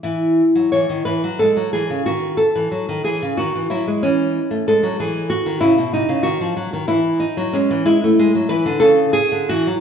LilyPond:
\new Staff \with { instrumentName = "Nylon-string guitar" } { \clef bass \time 6/8 \key e \major \tempo 4. = 61 << { e'4 cis''8 b'8 a'8 gis'8 | fis'8 a'4 gis'8 fis'8 e'8 | cis'4 a'8 gis'8 fis'8 e'8 | ees'8 ges'4 e'8 dis'8 cis'8 |
\key cis \phrygian e'4 b'8 a'8 gis'8 fis'8 | } \\ { e8. fis16 e16 dis16 e16 fis16 gis16 fis16 e16 cis16 | dis8. e16 fis16 dis16 e16 cis16 dis16 e16 fis16 gis16 | e8. a16 gis16 fis16 e8. dis16 cis16 b,16 | c16 cis16 ees16 f16 ges16 ees16 e8. fis16 gis16 e16 |
gis16 a16 gis16 fis16 e16 d16 cis8. d16 e16 fis16 | } >> }